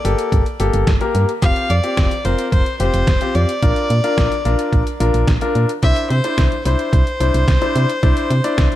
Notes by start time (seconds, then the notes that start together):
Already playing: D5
0.05 G1 A#3 G4 A4, closed hi-hat
0.19 closed hi-hat
0.32 G1, kick, closed hi-hat
0.46 closed hi-hat
0.60 G1 A#3 G4 A4, closed hi-hat
0.74 G1, closed hi-hat
0.87 G1, kick, snare, closed hi-hat
1.01 A#3 G4 A#4, closed hi-hat
1.15 G2, closed hi-hat
1.29 closed hi-hat
1.42 F1 C4 F4 G4 F5, kick, closed hi-hat
1.56 closed hi-hat
1.70 F2 D5, closed hi-hat
1.84 C4 F4 G4, closed hi-hat
1.97 F1, kick, snare, closed hi-hat
2.11 closed hi-hat
2.25 F1 C4 F4 A#4 C5, closed hi-hat
2.39 closed hi-hat
2.52 F1 C5, kick, closed hi-hat
2.66 closed hi-hat
2.80 F1 C4 F4 G4 C5, closed hi-hat
2.94 F1, closed hi-hat
3.07 F1, kick, snare, closed hi-hat
3.21 C4 F4 G4, closed hi-hat
3.35 F2 D5, closed hi-hat
3.49 closed hi-hat
3.62 A#1 D4 F4 A#4, kick, closed hi-hat
3.76 closed hi-hat
3.90 A#2, closed hi-hat
4.04 D4 F4 A#4, closed hi-hat
4.18 A#1, kick, snare, closed hi-hat
4.32 closed hi-hat
4.45 A#1 D4 F4 A#4, closed hi-hat
4.59 closed hi-hat
4.73 A#1, kick, closed hi-hat
4.87 closed hi-hat
5.00 A#1 D4 F4 A#4, closed hi-hat
5.14 A#1, closed hi-hat
5.28 A#1, kick, snare, closed hi-hat
5.41 D4 F4 A#4, closed hi-hat
5.55 A#2, closed hi-hat
5.69 closed hi-hat
5.83 C2 D4 E4 C5 E5, kick, closed hi-hat
5.96 closed hi-hat
6.10 C3 C5, closed hi-hat
6.24 D4 E4 C5, closed hi-hat
6.38 C2, kick, snare, closed hi-hat
6.52 closed hi-hat
6.65 C2 D4 E4 C5, closed hi-hat
6.79 closed hi-hat
6.93 C2, kick, closed hi-hat
7.07 closed hi-hat
7.20 C2 D4 E4 C5, closed hi-hat
7.34 C2, closed hi-hat
7.48 C2, kick, snare, closed hi-hat
7.62 D4 E4 C5, closed hi-hat
7.76 C3, closed hi-hat
7.89 closed hi-hat
8.03 C2 D4 E4 C5, kick, closed hi-hat
8.17 closed hi-hat
8.30 C3, closed hi-hat
8.44 D4 E4 D5, closed hi-hat
8.58 C2, kick, snare, closed hi-hat
8.72 closed hi-hat